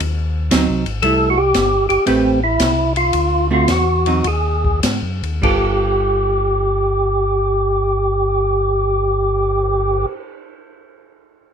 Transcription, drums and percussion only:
0.00 kick soft
0.00 ride medium
0.51 kick soft
0.51 snare medium
0.51 hi-hat pedal medium
0.51 ride medium
0.86 ride soft
1.03 kick soft
1.03 ride medium
1.54 kick soft
1.54 snare medium
1.54 hi-hat pedal soft
1.54 ride medium
1.90 ride soft
2.07 kick soft
2.07 ride medium
2.60 kick soft
2.60 snare medium
2.60 hi-hat pedal soft
2.60 ride medium
2.96 ride soft
3.13 kick soft
3.13 ride medium
3.68 kick soft
3.68 snare medium
3.68 hi-hat pedal medium
3.68 ride medium
4.06 ride soft
4.24 kick soft
4.24 ride medium
4.64 kick soft
4.83 kick soft
4.83 snare medium
4.83 hi-hat pedal medium
4.83 ride medium
5.23 ride soft
5.43 kick soft
5.43 crash medium
5.85 cymbal swell soft

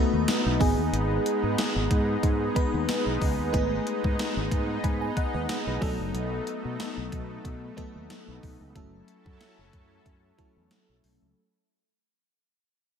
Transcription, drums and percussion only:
0.28 snare loud
0.28 closed hi-hat loud
0.28 tambourine medium
0.61 kick loud
0.61 open hi-hat medium
0.94 closed hi-hat medium
1.26 closed hi-hat medium
1.58 snare loud
1.58 closed hi-hat medium
1.58 tambourine medium
1.91 kick medium
1.91 closed hi-hat medium
2.23 kick medium
2.23 closed hi-hat medium
2.56 kick loud
2.56 closed hi-hat medium
2.89 snare loud
2.89 closed hi-hat loud
2.89 tambourine medium
3.22 kick medium
3.22 open hi-hat medium
3.54 kick loud
3.54 closed hi-hat medium
3.87 closed hi-hat medium
4.04 kick medium
4.19 snare loud
4.19 closed hi-hat medium
4.19 tambourine medium
4.51 kick medium
4.51 closed hi-hat medium
4.84 kick loud
4.84 closed hi-hat medium
5.17 kick loud
5.17 closed hi-hat medium
5.49 snare loud
5.49 closed hi-hat loud
5.49 tambourine medium
5.82 kick loud
5.82 open hi-hat medium
6.15 closed hi-hat medium
6.47 closed hi-hat medium
6.80 snare loud
6.80 closed hi-hat loud
6.80 tambourine medium
7.12 kick medium
7.12 closed hi-hat medium
7.45 kick medium
7.45 closed hi-hat medium
7.78 kick loud
7.78 closed hi-hat medium
8.10 snare loud
8.10 closed hi-hat loud
8.10 tambourine medium
8.43 kick medium
8.43 open hi-hat medium
8.76 kick loud
8.76 closed hi-hat medium
9.08 closed hi-hat medium
9.26 kick medium
9.41 snare loud
9.41 closed hi-hat medium
9.41 tambourine medium
9.73 kick medium
9.73 closed hi-hat medium
10.06 kick medium
10.06 closed hi-hat medium
10.39 kick loud
10.39 closed hi-hat medium
10.71 snare loud
10.71 closed hi-hat loud
10.71 tambourine medium
11.04 open hi-hat medium

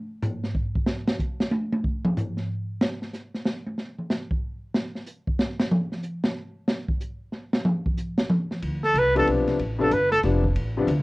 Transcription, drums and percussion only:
0.23 floor tom medium
0.23 hi-hat pedal medium
0.44 snare soft
0.55 kick medium
0.75 kick medium
0.86 snare medium
1.07 snare medium
1.19 kick medium
1.19 hi-hat pedal medium
1.40 snare medium
1.51 high tom medium
1.72 high tom medium
1.84 kick medium
2.04 mid tom medium
2.17 floor tom medium
2.17 hi-hat pedal medium
2.37 snare soft
2.81 snare medium
3.02 snare soft
3.13 snare soft
3.13 hi-hat pedal medium
3.35 snare soft
3.46 snare medium
3.67 high tom soft
3.78 snare soft
3.99 mid tom soft
4.10 snare medium
4.10 hi-hat pedal medium
4.31 kick medium
4.75 snare loud
4.95 snare soft
5.06 hi-hat pedal medium
5.27 kick medium
5.39 snare loud
5.60 snare medium
5.71 mid tom loud
5.92 snare soft
6.03 hi-hat pedal medium
6.24 snare loud
6.68 snare loud
6.88 kick medium
7.00 hi-hat pedal medium
7.32 snare soft
7.53 snare medium
7.65 mid tom medium
7.86 kick medium
7.97 hi-hat pedal medium
8.18 snare loud
8.30 mid tom medium
8.51 snare soft
8.62 ride medium
8.83 snare soft
8.95 hi-hat pedal soft
8.95 ride medium
9.16 ride soft
9.27 ride medium
9.48 snare soft
9.48 ride soft
9.59 ride medium
9.91 hi-hat pedal medium
9.91 ride medium
10.12 snare soft
10.12 ride soft
10.23 snare soft
10.23 ride medium
10.44 kick medium
10.56 ride medium
10.88 hi-hat pedal soft
10.88 ride medium

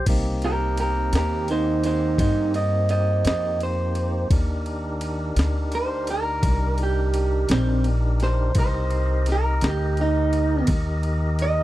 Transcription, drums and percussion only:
0.06 kick loud
0.06 crash loud
0.06 ride medium
0.42 ride medium
0.77 ride medium
1.13 snare loud
1.13 ride medium
1.48 ride medium
1.83 ride medium
2.18 kick medium
2.18 ride medium
2.54 ride medium
2.89 ride medium
3.25 snare loud
3.25 ride medium
3.60 ride medium
3.95 ride medium
4.30 kick loud
4.30 ride medium
4.66 ride medium
5.01 ride medium
5.36 snare loud
5.36 ride medium
5.72 ride medium
6.07 ride medium
6.43 kick medium
6.43 ride medium
6.78 ride medium
7.14 ride medium
7.49 snare loud
7.49 ride medium
7.84 ride medium
8.20 snare soft
8.20 ride medium
8.55 kick loud
8.55 ride medium
8.91 ride medium
9.26 snare soft
9.26 ride medium
9.61 snare loud
9.61 ride medium
9.97 ride medium
10.33 ride medium
10.67 kick medium
10.67 ride medium
11.03 ride medium
11.39 ride medium

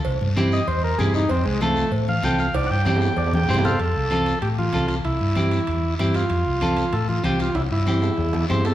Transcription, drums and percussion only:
0.05 cowbell medium
0.05 long guiro medium
0.21 low conga medium
0.37 high conga medium
0.37 short guiro medium
0.52 short guiro medium
0.67 cowbell medium
0.67 long guiro medium
0.99 high conga medium
0.99 low conga medium
0.99 short guiro medium
1.14 short guiro medium
1.29 cowbell loud
1.29 long guiro medium
1.61 high conga medium
1.61 short guiro medium
1.76 short guiro medium
1.91 cowbell medium
1.91 long guiro medium
2.08 high conga medium
2.23 high conga medium
2.23 short guiro medium
2.38 short guiro medium
2.54 cowbell loud
2.54 high timbale medium
2.54 long guiro medium
2.64 high timbale loud
2.85 high conga medium
2.85 high timbale medium
2.85 short guiro medium
2.96 low timbale medium
3.01 short guiro medium
3.07 low timbale medium
3.17 cowbell medium
3.17 low timbale medium
3.17 long guiro medium
3.27 low timbale medium
3.33 high conga medium
3.33 low timbale medium
3.44 low conga medium
3.49 short guiro medium
3.54 low conga loud
3.58 low timbale loud
3.64 low conga loud
3.64 short guiro medium
3.69 low timbale medium
3.80 high timbale medium
3.80 long guiro medium
4.11 high conga medium
4.11 high timbale medium
4.11 short guiro medium
4.26 high timbale medium
4.26 short guiro medium
4.42 high timbale medium
4.42 long guiro medium
4.58 high conga medium
4.73 high conga medium
4.73 high timbale medium
4.73 short guiro medium
4.88 high timbale medium
4.88 short guiro medium
5.05 high timbale medium
5.05 long guiro medium
5.35 high conga medium
5.35 high timbale medium
5.35 short guiro medium
5.51 high timbale medium
5.51 short guiro medium
5.67 high timbale medium
5.67 long guiro medium
5.99 high conga medium
5.99 high timbale medium
5.99 short guiro medium
6.14 high timbale medium
6.14 short guiro medium
6.30 high timbale medium
6.30 long guiro medium
6.61 high conga medium
6.61 high timbale medium
6.61 short guiro medium
6.77 high timbale medium
6.77 short guiro medium
6.93 high timbale medium
6.93 long guiro medium
7.09 high conga medium
7.24 high conga medium
7.24 high timbale medium
7.24 short guiro medium
7.39 high timbale medium
7.39 short guiro medium
7.55 high timbale loud
7.55 long guiro medium
7.86 high conga medium
7.86 high timbale medium
7.86 short guiro medium
8.02 low timbale medium
8.02 short guiro medium
8.17 low timbale medium
8.17 long guiro medium
8.33 high conga medium
8.33 low timbale medium
8.49 high conga medium
8.49 low timbale medium
8.49 short guiro medium
8.65 low timbale medium
8.65 short guiro medium

